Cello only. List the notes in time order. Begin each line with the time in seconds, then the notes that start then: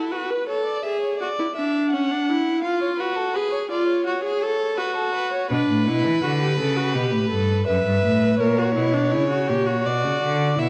5.51 B2
5.69 A2
5.87 B2
6.06 E3
6.23 D3
6.59 C#3
6.95 B2
7.13 A2
7.31 G2
7.68 F#2
7.86 G2
8.04 A2
8.40 A#2
8.77 B2
9.14 C#3
9.50 A#2
9.86 B2
10.04 C#3
10.23 D3
10.60 B2